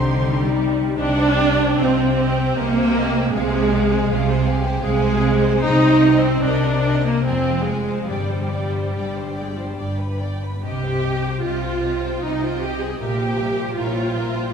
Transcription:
Already playing: C2 C3 D3 G3 C4 D#4 G4 C5 D#5 C6
0.29 D#4
0.47 C3
0.65 G3
0.97 C2 C3 D4 G4 D#5
1.19 C5 G5
1.39 C4 G4 D#5
1.59 C5 G5
1.78 C2 C3 C4 F4 G4 D#5
1.99 C5 G5
2.17 G4 C5 D#5
2.37 C5 G5
2.55 C2 C3 A#3 G4 G#4 D#5
2.76 C5 G5
2.94 C4 G4 D#5
3.14 C5 G5
3.32 C2 C3 G#3 G#4 F5
3.52 C5 G#5
3.71 C4 G#4 F5
3.90 C5 G#5
4.09 C2 C3 F4 G#4 F5
4.28 C5 G#5
4.46 G4 G#4 C5 F5
4.64 C5 G#5
4.82 C2 C3 G#3 G#4 F5
5.00 C5 G#5
5.22 C4 G#4 F5
5.27 C5
5.43 C5 G#5
5.63 C2 C3 D#4 D#5 G5
5.86 C5 D#5
6.04 C4 D#5 G5
6.23 C4 C5 D#5
6.42 C2 C3 D4 G4 D#5 G5
6.47 A#4
6.63 C5 D#5
6.84 C5 D#5 G5
7.05 A#3 C5 D#5
7.26 F1 F2 C4 G#4 G#5
7.47 C5 F5
7.67 G#3 C4 F4 G#4 G#5
7.87 C5 F5
8.09 G1 G2 G3 G4 D5 G5
8.30 C5 D5
8.52 G3 D5 G5
8.73 C5 D5
8.95 G1 G2 D4 D5 G5
9.15 C5 D5
9.37 G4 D5 G5
9.42 G#3
9.52 G3
9.57 C5 D5
9.61 F3
9.70 G3
9.77 G1 G2 D5 G5
9.97 B4 B5
10.19 B3 D4 D5 G5
10.42 B4 B5
10.63 C2 C3 G4 D#5
10.83 C5 G5
11.03 C4 G4 D#5
11.25 C5 G5
11.44 C2 C3 F4 G4 C5 D#5
11.63 C5 G5
11.83 G4 C5 D#5
12.03 C5 G5
12.23 C2 C3 D#4 G4 D#5
12.42 F4 C5 G5
12.62 C4 G4 D#5
12.81 G#4 C5 G5
13.00 A#1 A#2 G4 A#4 E5
13.20 C5 G5
13.39 G3 A#4 C5 E5
13.57 C5 G5
13.76 A#1 A#2 E4 F4 A#4 C#5 E5
13.96 C5 G5
14.16 G4 A#4 C5 E5
14.36 C5 G5

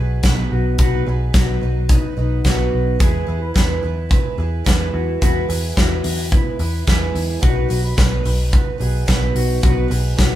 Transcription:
Already playing: B1 D#4 G#4 B4
0.00 F#3 B3
0.23 B1 B2 D#3 F#3 B3 D#4 B4, kick, snare, closed hi-hat
0.52 B1 F#4
0.78 B1 B2 D#3 F#3 B3 D#4 F#4 B4, kick, closed hi-hat
1.06 B1 F#3 B3 D#4 G#4 B4
1.33 B1 B2 D#3 F#3 B3 D#4 F#4 B4, kick, snare, closed hi-hat
1.61 B1 F#3 B3 D#4 B4
1.89 F#3 B3 D#4 B4, kick, closed hi-hat
2.17 B1 F#3 B3 D#4 B4
2.44 B1 B2 D#3 F#3 B3 D#4 F#4 B4, kick, snare, closed hi-hat
2.73 B1
2.99 E2 E3 G#3 B3 E4 G#4 B4, kick, closed hi-hat
3.27 E2 B3 E4 B4
3.42 B4
3.54 E2 E3 G#3 B3 E4 B4, kick, snare, closed hi-hat
3.83 E2 B3 E4 B4
4.09 G#3 B3 E4 B4, kick, closed hi-hat
4.38 E2 B3 E4 G#4 B4
4.65 E2 E3 G#3 B3 E4 B4, kick, snare, closed hi-hat
4.93 E2 F#4
5.21 E2 E3 G#3 B3 E4 F#4 B4, kick, closed hi-hat
5.49 E2 B3 E4 G#4 B4, open hi-hat
5.76 E2 E3 G#3 B3 E4 F#4 B4, kick, snare, closed hi-hat
6.04 E2 B3 E4 B4, open hi-hat
6.31 G#3 B3 E4 B4, kick, closed hi-hat
6.59 E2 B3 E4 B4, open hi-hat
6.87 E2 E3 G#3 B3 E4 G#4 B4, kick, snare, closed hi-hat
7.15 E2, open hi-hat
7.41 B1 B2 D#3 F#3 B3 D#4 F#4 B4, kick, closed hi-hat
7.69 B1 F#3 B3 D#4 B4, open hi-hat
7.84 B4
7.96 B1 B2 D#3 F#3 B3 D#4 B4, kick, snare, closed hi-hat
8.24 B1 F#3 B3 D#4 B4, open hi-hat
8.51 F#3 B3 D#4 B4, kick, closed hi-hat
8.78 B1 F#3 B3 D#4 G#4 B4, open hi-hat
9.06 B1 B2 D#3 F#3 B3 D#4 B4, kick, snare, closed hi-hat
9.35 B1 F#4, open hi-hat
9.61 B1 B2 D#3 F#3 B3 D#4 F#4 B4, kick, closed hi-hat
9.88 B1 F#3 B3 D#4 G#4 B4, open hi-hat
10.16 B1 B2 D#3 F#3 B3 D#4 F#4 B4, kick, snare, closed hi-hat

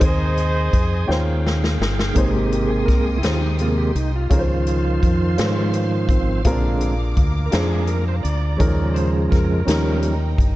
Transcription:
Already playing: D#5
0.00 D#2 D#3 C4 D#4 G#4 C5 G#5 D#6, kick, closed hi-hat
0.04 D#4 G#4 C5
0.38 closed hi-hat
0.73 F2, kick, closed hi-hat
1.07 D#2 D#3 C#4 F4 C5 G5, snare
1.11 F5
1.47 snare
1.64 snare
1.80 G1, snare
1.99 snare
2.13 G#1 G#2 C3 G#3 A#3 D#4 G4 G#4 G5 C6 D#6, kick, closed hi-hat
2.18 C5
2.33 G4
2.52 G4, closed hi-hat
2.67 G#4
2.86 C2 A#4, kick, closed hi-hat
2.90 snare
3.04 G#4
3.18 E4
3.22 D#2 D#4 F4 G4 G#4 C5, snare, closed hi-hat
3.42 D#4
3.59 C3 G#3 A#3 F4, closed hi-hat
3.78 G4
3.95 C2 D#4, closed hi-hat
4.16 F4
4.30 C#2 C#3 D#3 F3 C#4 F4 G#4 A#4 C5 F5 C6, kick, closed hi-hat
4.39 C5
4.67 F4, closed hi-hat
5.03 F2, kick, closed hi-hat
5.37 G#2 C#4 F4 G#4 B4, snare, closed hi-hat
5.46 C5
5.74 closed hi-hat
6.09 G#1 D#3 F3 C4, kick, closed hi-hat
6.45 A#1 A#2 D3 G#3 C4 F4 G#4 A#4 A#5 D6, kick, closed hi-hat
6.51 D4
6.81 closed hi-hat
7.17 D2, kick, closed hi-hat
7.46 A#4
7.51 F2 D4 F4 G#4 C5, snare, closed hi-hat
7.87 A#4, closed hi-hat
8.08 C5
8.23 D2 D5, closed hi-hat
8.56 C#3 D#3 F3 G#3 C#4 D#4 G#4 A#4, kick, closed hi-hat
8.60 D#2 D#4
8.94 C5, closed hi-hat
9.31 F2 A#4, kick, snare, closed hi-hat
9.65 D#2 D#3 F3 G3 C#4 D#4 G4 A#4 G5 A#5, closed hi-hat
9.69 snare
10.03 closed hi-hat
10.38 G1, kick, closed hi-hat

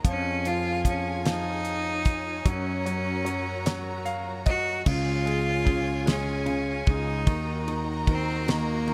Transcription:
0.04 F2 F3 F4 G#4 C#5 G#5, kick, closed hi-hat
0.08 C#4
0.45 F3 F4, closed hi-hat
0.85 F3 C#4, kick, closed hi-hat
1.25 F3 D#4, snare, closed hi-hat
1.65 closed hi-hat
2.05 kick, closed hi-hat
2.45 F#2 F#3 C#4 F#4 A#4 A#5, kick, closed hi-hat
2.85 F#3, closed hi-hat
3.25 F#3, closed hi-hat
3.66 F#3, snare, closed hi-hat
4.05 F5, closed hi-hat
4.46 F#4 D#5, kick, closed hi-hat
4.86 C#2 C#3 F4 G#4 C#5 G#5, kick, crash
5.25 G#3, ride
5.65 C#3, kick, ride
6.06 G#3, snare, ride
6.10 C#4
6.46 C#3, ride
6.86 C#2 G#3 D#4, kick, ride
7.27 D#2 D#3 F#4 A#4 D#5 A#5, kick, ride
7.68 D#3, ride
8.07 D#3, kick, ride
8.11 C4
8.48 D#3 A#3, snare, ride
8.87 D#3, ride

